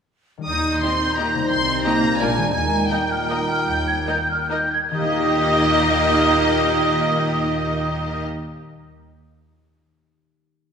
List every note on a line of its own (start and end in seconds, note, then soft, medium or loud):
0.38 1.53 D#3 soft
0.38 1.37 G3 soft
0.38 1.42 D#4 soft
0.44 0.76 D#2 soft
0.44 2.16 D#4 soft
0.44 1.50 A#4 soft
0.44 0.80 D#6 medium
0.48 1.48 A#2 soft
0.48 2.17 D#3 soft
0.48 2.16 G3 soft
0.48 2.23 D#4 soft
0.48 0.80 D#4 medium
0.48 2.17 G6 soft
0.81 0.91 D#3 soft
0.81 1.18 C4 medium
0.81 0.91 D#4 soft
0.81 0.91 G4 soft
0.81 0.91 D#5 soft
0.81 1.17 C6 medium
1.16 1.27 D#3 soft
1.16 1.51 A#3 soft
1.16 1.27 D#4 soft
1.16 1.26 G4 soft
1.16 1.26 D#5 soft
1.16 1.50 A#5 medium
1.34 2.13 C3 soft
1.38 2.15 G3 soft
1.43 2.18 D#4 soft
1.47 2.20 C5 soft
1.47 1.83 C6 medium
1.51 1.79 C2 medium
1.51 2.20 C3 soft
1.51 1.84 C4 medium
1.84 1.94 D#3 medium
1.84 2.21 A#3 medium
1.84 1.94 D#4 soft
1.84 1.93 G4 soft
1.84 1.92 D#5 soft
1.84 2.20 A#5 medium
2.03 2.48 A#2 medium
2.08 2.40 A#3 soft
2.12 2.52 F4 soft
2.17 2.49 A#1 medium
2.17 2.54 G#3 medium
2.17 2.55 A#3 medium
2.17 2.28 A#4 medium
2.17 2.55 D5 soft
2.17 2.28 D5 soft
2.17 2.52 G#5 medium
2.21 2.53 A#2 medium
2.21 2.55 F3 medium
2.21 2.29 A#3 soft
2.21 2.55 D4 medium
2.21 2.54 D4 medium
2.21 2.29 F4 medium
2.21 2.55 A#5 medium
2.37 4.84 D#3 soft
2.42 4.97 A#3 soft
2.46 5.04 D#4 soft
2.51 2.85 D#2 medium
2.51 4.67 A#2 soft
2.51 4.71 D#3 soft
2.51 4.67 D#4 medium
2.51 5.18 D#5 soft
2.51 2.90 G#5 medium
2.55 2.90 G#3 medium
2.55 4.68 A#3 soft
2.55 4.68 D#4 medium
2.55 2.87 A#5 soft
2.89 4.71 G3 soft
2.89 2.99 A#3 soft
2.89 2.98 D#4 soft
2.89 2.99 A#4 soft
2.89 2.99 D#5 soft
2.89 4.70 G5 medium
2.89 3.09 G6 medium
3.11 3.30 F6 medium
3.30 3.38 A#3 soft
3.30 3.38 D#4 soft
3.30 3.38 A#4 soft
3.30 3.38 D#5 soft
3.30 3.36 D#6 medium
3.49 3.67 F6 medium
3.67 4.00 D#2 soft
3.67 3.87 G6 medium
3.87 3.93 G#6 soft
4.07 4.15 A#3 soft
4.07 4.15 D#4 soft
4.07 4.16 A#4 soft
4.07 4.16 D#5 soft
4.07 4.29 G6 medium
4.30 4.51 F6 medium
4.50 4.58 A#3 soft
4.50 4.58 D#4 soft
4.50 4.59 A#4 soft
4.50 4.59 D#5 soft
4.50 4.71 G6 medium
4.71 4.92 G#6 medium
4.91 8.22 D#2 medium
4.91 8.22 A#2 medium
4.91 8.92 D#3 medium
4.91 8.22 D#3 medium
4.91 8.23 D#3 medium
4.91 8.22 G3 medium
4.91 8.22 A#3 medium
4.91 8.22 D#4 medium
4.91 8.22 G4 medium
4.91 8.23 G4 medium
4.91 8.23 D#5 medium
4.91 8.22 D#6 medium
4.99 8.96 A#3 medium
5.05 8.99 D#4 soft
5.12 9.03 G4 medium
5.19 9.06 D#5 medium
5.27 9.10 G5 soft